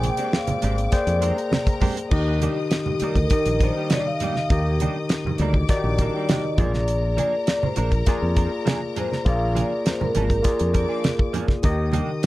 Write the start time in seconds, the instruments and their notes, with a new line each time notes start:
Already playing: tine electric piano A#3 G#4 C5 D5 G5, string section D5 D6
0.03 muted clean electric guitar stroke, closed hi-hat, high conga
0.07 vibraphone G5
0.17 clean electric guitar G#3 C4 D4 G4, closed hi-hat
0.32 vibraphone F5, snare, muted conga
0.47 muted fingered electric bass stroke, closed hi-hat, high conga, low conga
0.62 fingered electric bass G#1, clean electric guitar G#3 C4 D4 G4, closed hi-hat, muted conga
0.77 muted clean electric guitar stroke, closed hi-hat
0.91 tine electric piano A#3 G#4 C5 D5 G5, muted fingered electric bass stroke, kick, snare, closed hi-hat
0.97 vibraphone D5
1.07 fingered electric bass F2, muted clean electric guitar stroke, closed hi-hat
1.21 clean electric guitar G#3 C4 D4 G4, string section A#4 A#5, closed hi-hat
1.37 muted clean electric guitar stroke, closed hi-hat
1.52 snare, high conga
1.67 muted clean electric guitar stroke, kick, closed hi-hat
1.81 clean electric guitar G#3 C4 D4 G4, kick, open hi-hat, low conga
1.97 muted clean electric guitar stroke, closed hi-hat
2.11 fingered electric bass D#2, tine electric piano D#3 D#4 G4 D#5, string section D#5 D#6, kick, crash
2.40 clean electric guitar G3 A#3 D4 G4, vibraphone G4, closed hi-hat, muted conga, high conga
2.71 muted clean electric guitar stroke, snare, closed hi-hat
2.86 muted clean electric guitar stroke, high conga, low conga
3.00 clean electric guitar G3 A#3 D4 A#4, vibraphone A#4, muted fingered electric bass stroke, closed hi-hat, muted conga
3.15 fingered electric bass D2, muted clean electric guitar stroke, kick, closed hi-hat
3.30 tine electric piano D#3 D#4 G4 D#5, vibraphone A#4, muted fingered electric bass stroke, muted clean electric guitar stroke, kick, closed hi-hat
3.45 fingered electric bass A#1, muted clean electric guitar stroke, closed hi-hat
3.60 clean electric guitar G3 A#3 D4 A#4, vibraphone C5, kick, closed hi-hat, muted conga
3.77 clean electric guitar G3 A#3 D4 G4
3.90 clean electric guitar G3 A#3 D4 G4, vibraphone D5, snare, closed hi-hat, high conga
4.07 vibraphone F5, muted clean electric guitar stroke
4.20 clean electric guitar G3 A#3 D4 G4, closed hi-hat, low conga
4.35 snare, high conga
4.50 fingered electric bass D#2, tine electric piano D#3 D#4 G4 D#5, kick, closed hi-hat
4.80 clean electric guitar G3 A#3 D4 G4, closed hi-hat, high conga
5.09 muted clean electric guitar stroke, snare, closed hi-hat
5.25 muted fingered electric bass stroke, muted clean electric guitar stroke, high conga, low conga
5.38 fingered electric bass D2, clean electric guitar G3 A#3 D4, string section D5 D6, closed hi-hat
5.42 clean electric guitar A#4
5.54 muted clean electric guitar stroke, kick
5.69 tine electric piano D#3 D#4 F#4 D5, muted fingered electric bass stroke, muted clean electric guitar stroke, kick, snare, closed hi-hat, muted conga
5.76 tine electric piano G4
5.84 fingered electric bass A#1, muted clean electric guitar stroke
5.98 clean electric guitar G3 A#3 D4, kick, closed hi-hat, muted conga
6.02 clean electric guitar A#4
6.15 clean electric guitar G3 A#3 D4 G4
6.29 clean electric guitar G3 A#3 D4 G4, vibraphone D#5, snare, closed hi-hat, high conga
6.44 muted clean electric guitar stroke
6.58 fingered electric bass A#1, clean electric guitar F3 A#3 D4 G#4, tine electric piano A#3 F4 G#4 D5, string section A#4 A#5, vibraphone D5, kick, closed hi-hat, low conga
6.74 muted clean electric guitar stroke, snare, high conga
6.88 closed hi-hat
7.17 clean electric guitar F3 A#3 D4 G#4, vibraphone D5, closed hi-hat, muted conga, high conga
7.47 muted clean electric guitar stroke, snare, closed hi-hat
7.63 vibraphone C5, muted clean electric guitar stroke, muted fingered electric bass stroke, high conga, low conga
7.76 fingered electric bass A#1, clean electric guitar F3 A#3 D4 A#4, closed hi-hat, muted conga
7.80 vibraphone A#4
7.92 muted clean electric guitar stroke, kick, closed hi-hat
8.06 clean electric guitar F3 A#3 D4 G#4, tine electric piano A#3 F4 G#4 D5, muted fingered electric bass stroke, kick, snare, closed hi-hat, muted conga
8.21 fingered electric bass F2, muted clean electric guitar stroke
8.36 clean electric guitar F3 A#3 D4 A#4, kick, closed hi-hat, muted conga
8.52 muted clean electric guitar stroke
8.65 clean electric guitar F3 A#3 D4 G#4, snare, closed hi-hat, muted conga, high conga
8.82 muted clean electric guitar stroke
8.96 clean electric guitar F3 A#3 D4 G#4, vibraphone C5, closed hi-hat, low conga
9.12 snare, high conga
9.25 fingered electric bass A#1, tine electric piano A#3 F4 G#4 D5, kick, closed hi-hat
9.29 vibraphone F5
9.55 clean electric guitar F3 A#3 D4 G#4, closed hi-hat, high conga
9.59 vibraphone D5
9.85 vibraphone C5, muted clean electric guitar stroke, snare, closed hi-hat, muted conga
10.01 vibraphone A#4, muted clean electric guitar stroke, muted fingered electric bass stroke, high conga, low conga
10.15 fingered electric bass G#1, clean electric guitar F3 A#3 D4 A#4, closed hi-hat, muted conga
10.30 muted clean electric guitar stroke, kick, closed hi-hat
10.43 tine electric piano A#3 F4 G#4 D5, muted clean electric guitar stroke, muted fingered electric bass stroke, kick, snare, closed hi-hat
10.59 fingered electric bass F2, muted clean electric guitar stroke, closed hi-hat
10.74 clean electric guitar F3 A#3 D4 A#4, string section D5 D6, kick, closed hi-hat
10.89 clean electric guitar F3 A#3 D4 G#4
11.04 snare, closed hi-hat, high conga
11.19 muted clean electric guitar stroke, kick
11.33 clean electric guitar F3 A#3 D4 G#4, closed hi-hat, muted conga, low conga
11.48 muted clean electric guitar stroke, kick, snare, high conga
11.63 fingered electric bass D#2, tine electric piano D#3 D#4 G4 D#5, string section D#5 D#6, kick, closed hi-hat
11.92 clean electric guitar G3 A#3 D4 G4, closed hi-hat, muted conga, high conga